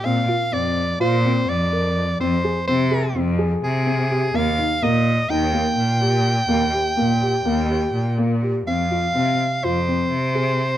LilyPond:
<<
  \new Staff \with { instrumentName = "Soprano saxophone" } { \time 9/8 \key f \dorian \tempo 4. = 83 f''4 d''4 c''4 d''4. | c''4 c''4 r4 aes'4. | f''4 ees''4 g''2~ g''8~ | g''2.~ g''8 r4 |
f''2 c''2~ c''8 | }
  \new Staff \with { instrumentName = "Felt piano" } { \time 9/8 \key f \dorian c'8 f'8 c'4 f'8 c'4 bes'4 | c'8 aes'8 c'8 aes'8 c'8 aes'4 c'8 g'8 | bes8 ees'8 bes4 ees'8 bes4 g'4 | bes8 g'8 bes8 g'8 bes8 g'4 bes8 g'8 |
c'8 f'8 c'4 f'8 c'4 aes'4 | }
  \new Staff \with { instrumentName = "Cello" } { \clef bass \time 9/8 \key f \dorian bes,8 r8 f,4 bes,4 f,4. | f,8 r8 c4 f,4 c4. | ees,8 r8 bes,4 ees,4 bes,4. | ees,8 r8 bes,4 ees,4 bes,4. |
f,4 c8 r8 f,4 c4. | }
>>